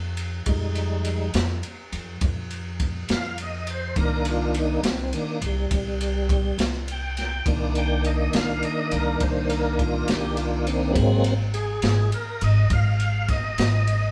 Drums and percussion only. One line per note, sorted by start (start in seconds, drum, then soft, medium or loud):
0.17 ride medium
0.46 kick loud
0.46 ride medium
0.75 ride medium
1.05 ride medium
1.34 snare loud
1.34 ride medium
1.63 ride medium
1.92 ride medium
2.21 kick loud
2.21 ride medium
2.50 ride medium
2.80 kick medium
2.80 ride medium
3.09 snare medium
3.09 ride medium
3.38 ride medium
3.67 ride medium
3.96 kick loud
3.96 ride medium
4.25 ride medium
4.54 ride medium
4.83 snare loud
4.83 ride medium
5.13 ride medium
5.42 ride medium
5.71 kick loud
5.71 ride medium
6.01 ride medium
6.29 kick medium
6.29 ride medium
6.59 snare loud
6.59 ride medium
6.88 ride medium
7.17 snare soft
7.17 ride medium
7.46 kick loud
7.46 ride medium
7.75 ride medium
8.04 ride medium
8.33 snare loud
8.33 ride medium
8.63 ride medium
8.91 ride medium
9.20 kick loud
9.20 ride medium
9.50 ride medium
9.79 kick medium
9.79 ride medium
10.08 snare loud
10.08 ride medium
10.37 ride medium
10.67 ride medium
10.95 kick loud
10.95 ride medium
11.24 ride medium
11.54 ride medium
11.82 snare loud
11.82 ride medium
12.12 ride medium
12.41 ride medium
12.70 kick loud
12.70 ride medium
13.00 ride medium
13.28 kick medium
13.28 snare soft
13.28 ride medium
13.58 snare loud
13.58 ride medium
13.87 ride medium